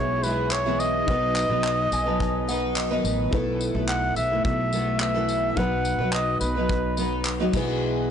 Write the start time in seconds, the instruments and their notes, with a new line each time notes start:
Already playing: upright bass B1, steel-string acoustic guitar G#3 B3 E4 G#4, felt piano E4 G#4 B4, flugelhorn C#5
0.23 steel-string acoustic guitar G#3 B3 E4 G#4, flugelhorn B4, tambourine
0.51 flugelhorn C#5, clap
0.66 steel-string acoustic guitar B2 E3 G#3 B3 E4 G#4
0.80 flugelhorn D#5, tambourine
1.06 upright bass B1, steel-string acoustic guitar F#3 B3 D#4, felt piano D#4 F#4 B4, kick
1.10 steel-string acoustic guitar B4
1.36 clap, tambourine
1.49 upright bass B1, steel-string acoustic guitar F#3 B3 D#4 B4
1.64 clap
1.92 upright bass B1, felt piano G#5, tambourine
2.06 steel-string acoustic guitar F#3 B3 D#4 B4, felt piano A5
2.20 felt piano G#5, kick
2.48 steel-string acoustic guitar F#3 B3 D#4 B4, felt piano F#5, tambourine
2.76 felt piano D#5, clap
2.90 steel-string acoustic guitar B2 D#3 F#3 B3 D#4 B4
3.04 upright bass A1, tambourine
3.31 upright bass B1, steel-string acoustic guitar A3 B3 E4, felt piano E4 A4 B4, kick
3.35 steel-string acoustic guitar A4
3.61 tambourine
3.74 upright bass B1, steel-string acoustic guitar A3 B3 E4 A4
3.89 flugelhorn F#5, clap
4.16 upright bass B1, flugelhorn E5, tambourine
4.30 steel-string acoustic guitar A3 B3 E4 A4
4.45 upright bass B1, flugelhorn E5, kick
4.73 steel-string acoustic guitar A3 B3 E4 A4, tambourine
5.00 flugelhorn E5, clap
5.14 steel-string acoustic guitar B2 E3 A3 B3 E4 A4
5.29 tambourine
5.55 upright bass B1, steel-string acoustic guitar F#3 B3 D#4 B4, felt piano D#4 F#4 B4, flugelhorn F#5, kick
5.85 tambourine
5.98 upright bass B1, steel-string acoustic guitar F#3 B3 D#4 B4
6.13 flugelhorn D#5, clap
6.41 upright bass B1, flugelhorn B4, tambourine
6.55 steel-string acoustic guitar F#3 B3 D#4 B4
6.69 kick
6.97 steel-string acoustic guitar F#3 B3 D#4 B4, tambourine
7.25 clap
7.40 steel-string acoustic guitar B2 D#3 F#3 B3 D#4 B4
7.52 upright bass B1, steel-string acoustic guitar B2 E3 G#3 B3 E4 G#4, felt piano E4 G#4, kick, tambourine, crash
7.57 felt piano B4